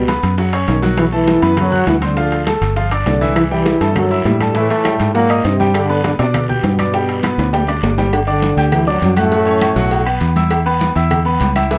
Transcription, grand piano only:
0.08 0.32 B3 medium
0.08 0.33 B4 medium
0.08 0.33 B5 medium
0.38 0.50 F#3 medium
0.38 0.50 F#4 medium
0.38 0.51 F#5 medium
0.53 0.77 C#4 medium
0.53 0.78 C#5 medium
0.53 0.78 C#6 medium
0.82 1.07 F#3 medium
0.82 1.07 F#4 medium
0.82 1.07 F#5 medium
1.12 1.37 A3 medium
1.12 1.37 A4 medium
1.12 1.37 A5 medium
1.42 1.67 B3 medium
1.42 1.67 B4 medium
1.42 1.67 B5 medium
1.72 1.96 F#4 medium
1.72 1.96 F#5 medium
1.72 1.97 F#6 medium
2.02 2.14 C4 medium
2.02 2.14 C5 medium
2.02 2.15 C6 medium
2.17 2.41 F3 medium
2.17 2.42 F4 medium
2.17 2.42 F5 medium
2.47 2.71 A3 medium
2.47 2.71 A4 medium
2.47 2.71 A5 medium
2.76 2.88 F3 medium
2.76 2.89 F4 medium
2.76 2.89 F5 medium
2.92 3.16 D4 medium
2.92 3.16 D5 medium
2.92 3.16 D6 medium
3.21 3.46 E3 medium
3.21 3.46 E4 medium
3.21 3.46 E5 medium
3.51 3.76 G3 medium
3.51 3.76 G4 medium
3.51 3.76 G5 medium
3.81 4.05 A3 medium
3.81 4.05 A4 medium
3.81 4.05 A5 medium
4.11 4.35 E4 medium
4.11 4.35 E5 medium
4.11 4.36 E6 medium
4.40 4.53 A3 medium
4.40 4.53 A4 medium
4.40 4.53 A5 medium
4.55 4.80 E3 medium
4.55 4.80 E4 medium
4.55 4.80 E5 medium
4.85 5.10 G3 medium
4.85 5.10 G4 medium
4.85 5.10 G5 medium
5.15 5.27 F#3 medium
5.15 5.27 F#4 medium
5.15 5.27 F#5 medium
5.30 5.54 D#4 medium
5.30 5.54 D#5 medium
5.30 5.55 D#6 medium
5.60 5.84 G3 medium
5.60 5.84 G4 medium
5.60 5.84 G5 medium
5.89 6.14 B3 medium
5.89 6.14 B4 medium
5.89 6.14 B5 medium
6.19 6.43 D4 medium
6.19 6.44 D5 medium
6.19 6.44 D6 medium
6.49 6.73 G4 medium
6.49 6.73 G5 medium
6.49 6.74 G6 medium
6.79 6.91 D4 medium
6.79 6.91 D5 medium
6.79 6.91 D6 medium
6.94 7.18 G3 medium
6.94 7.18 G4 medium
6.94 7.19 G5 medium
7.23 7.48 B3 medium
7.23 7.48 B4 medium
7.23 7.48 B5 medium
7.53 7.65 G3 medium
7.53 7.65 G4 medium
7.53 7.66 G5 medium
7.68 7.92 D4 medium
7.68 7.92 D5 medium
7.68 7.93 D6 medium
7.98 8.10 G3 medium
7.98 8.10 G4 medium
7.98 8.10 G5 medium
8.27 8.52 D4 medium
8.27 8.52 D5 medium
8.27 8.52 D6 medium
8.57 8.82 G4 medium
8.57 8.82 G5 medium
8.57 8.82 G6 medium
8.87 9.12 D4 medium
8.87 9.12 D5 medium
8.87 9.12 D6 medium
9.16 9.29 F#4 medium
9.16 9.29 F#5 medium
9.16 9.29 F#6 medium
9.32 9.44 F#3 medium
9.32 9.44 F#4 medium
9.32 9.44 F#5 medium
9.46 9.71 C#4 medium
9.46 9.71 C#5 medium
9.46 9.71 C#6 medium
9.76 10.01 F#3 medium
9.76 10.01 F#4 loud
9.76 10.01 F#5 medium
10.06 10.31 B3 medium
10.06 10.31 B4 medium
10.06 10.31 B5 medium
10.36 10.61 E4 medium
10.36 10.61 E5 medium
10.36 10.61 E6 medium
10.66 10.90 B3 medium
10.66 10.90 B4 medium
10.66 10.91 B5 medium
10.95 11.20 E4 medium
10.95 11.20 E5 medium
10.95 11.21 E6 medium
11.25 11.50 B3 medium
11.25 11.50 B4 medium
11.25 11.50 B5 medium
11.56 11.68 E4 medium
11.56 11.68 E5 medium
11.56 11.68 E6 medium
11.71 11.78 E3 medium
11.71 11.78 E4 medium
11.71 11.78 E5 medium

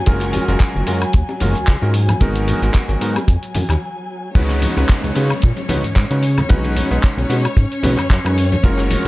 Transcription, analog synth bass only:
0.08 0.39 F#1 loud
0.48 0.56 F#1 loud
0.76 0.83 F#1 loud
0.88 1.05 F#2 medium
1.14 1.23 D#2 medium
1.41 1.55 F#1 medium
1.56 1.65 C#2 soft
1.68 1.77 C#2 medium
1.82 2.14 G#2 medium
2.21 2.53 G#1 medium
2.62 2.70 G#1 loud
2.89 2.96 G#1 loud
3.01 3.19 G#2 medium
3.28 3.37 F2 medium
3.55 3.64 F#2 medium
3.69 3.77 D#2 medium
4.35 4.68 C#2 medium
4.77 4.84 C#2 loud
5.04 5.11 C#2 loud
5.16 5.33 C#3 medium
5.43 5.52 A#2 medium
5.69 5.83 C#2 medium
5.84 5.94 G#2 soft
5.96 6.05 G#2 medium
6.11 6.42 C#3 medium
6.51 6.82 B1 medium
6.91 6.98 B1 loud
7.17 7.25 B1 loud
7.30 7.47 B2 medium
7.57 7.66 G#2 medium
7.83 7.97 B1 medium
7.98 8.08 F#2 soft
8.10 8.19 F#2 medium
8.25 8.56 F#2 medium
8.64 8.96 F#1 medium

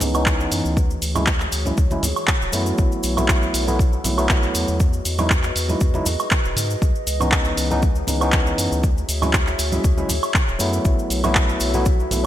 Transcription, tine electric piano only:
0.01 0.12 E3 medium
0.01 0.13 B3 medium
0.01 0.13 C#4 medium
0.01 0.13 D#4 medium
0.14 0.75 E3 medium
0.14 0.75 B3 medium
0.14 0.76 C#4 medium
0.14 0.76 D#4 medium
1.15 1.26 F#3 medium
1.15 1.26 G#3 medium
1.15 1.27 C#4 medium
1.15 1.27 E4 loud
1.66 1.77 F#3 medium
1.66 1.77 G#3 medium
1.66 1.77 C#4 medium
1.66 1.77 E4 medium
1.91 2.02 F#3 medium
1.91 2.02 G#3 medium
1.91 2.02 C#4 medium
1.91 2.02 E4 loud
2.52 3.13 F#3 medium
2.52 3.14 A3 medium
2.52 3.14 B3 medium
2.52 3.15 E4 loud
3.17 3.64 F#3 medium
3.17 3.64 A3 medium
3.17 3.64 B3 medium
3.17 3.65 E4 medium
3.67 3.78 F#3 medium
3.67 3.79 A3 medium
3.67 3.79 B3 medium
3.67 3.79 E4 loud
4.04 4.16 F#3 medium
4.04 4.16 A3 medium
4.04 4.16 B3 medium
4.04 4.16 E4 medium
4.17 4.78 F#3 medium
4.17 4.79 A3 medium
4.17 4.79 B3 medium
4.17 4.79 E4 medium
5.18 5.30 F#3 medium
5.18 5.30 G#3 medium
5.18 5.30 D#4 medium
5.18 5.30 E4 loud
5.69 5.80 F#3 medium
5.69 5.80 G#3 medium
5.69 5.80 D#4 medium
5.69 5.81 E4 medium
5.94 6.05 F#3 medium
5.94 6.05 G#3 medium
5.94 6.06 D#4 medium
5.94 6.06 E4 loud
7.20 7.67 E3 medium
7.20 7.68 B3 medium
7.20 7.68 C#4 medium
7.20 7.68 D#4 medium
7.70 7.82 E3 loud
7.70 7.82 B3 medium
7.70 7.82 C#4 medium
7.70 7.82 D#4 loud
8.07 8.19 E3 medium
8.07 8.19 B3 medium
8.07 8.19 C#4 medium
8.07 8.20 D#4 medium
8.20 8.82 E3 medium
8.20 8.82 B3 medium
8.20 8.82 C#4 medium
8.20 8.83 D#4 medium
9.22 9.33 F#3 medium
9.22 9.33 G#3 medium
9.22 9.33 C#4 medium
9.22 9.33 E4 medium
9.72 9.83 F#3 medium
9.72 9.84 G#3 medium
9.72 9.84 C#4 medium
9.72 9.84 E4 medium
9.97 10.09 F#3 medium
9.97 10.09 G#3 medium
9.97 10.09 C#4 medium
9.97 10.09 E4 loud
10.59 11.20 F#3 medium
10.59 11.20 A3 medium
10.59 11.21 B3 medium
10.59 11.21 E4 loud
11.23 11.71 F#3 medium
11.23 11.71 A3 medium
11.23 11.71 B3 medium
11.23 11.71 E4 medium
11.74 11.85 F#3 medium
11.74 11.85 A3 medium
11.74 11.85 B3 medium
11.74 11.86 E4 loud
12.11 12.22 F#3 medium
12.11 12.23 A3 medium
12.11 12.23 B3 medium
12.11 12.23 E4 medium

